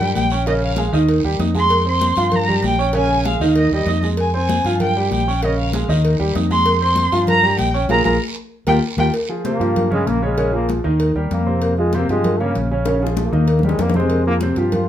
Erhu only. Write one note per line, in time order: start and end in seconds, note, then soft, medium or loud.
0.00 0.14 G5 loud
0.15 0.44 G5 medium
0.47 0.54 D#5 loud
0.63 0.91 F5 medium
1.59 1.86 C6 loud
1.89 2.37 C6 loud
2.35 2.65 A#5 loud
2.67 2.94 G5 medium
2.97 3.24 G#5 loud
3.27 3.55 F5 medium
3.58 3.72 D#5 loud
3.74 4.02 D#5 medium
4.21 4.34 G#5 loud
4.36 4.78 G#5 loud
4.82 5.10 G5 medium
5.12 5.45 G5 medium
5.44 5.58 D#5 medium
5.60 5.87 F5 medium
6.51 6.80 C6 loud
6.82 7.25 C6 loud
7.30 7.58 A#5 loud
7.59 7.88 G5 loud
7.91 8.00 A#5 loud
8.05 8.15 A#5 medium
8.68 8.77 G5 loud
8.99 9.09 G5 loud